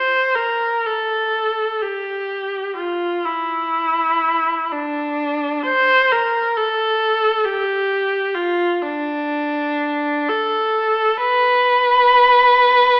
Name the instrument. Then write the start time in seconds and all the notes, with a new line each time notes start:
viola
Already playing: C5
0.35 A#4
0.86 A4
1.81 G4
2.76 F4
3.25 E4
4.72 D4
5.65 C5
6.12 A#4
6.57 A4
7.45 G4
8.35 F4
8.82 D4
10.29 A4
11.18 B4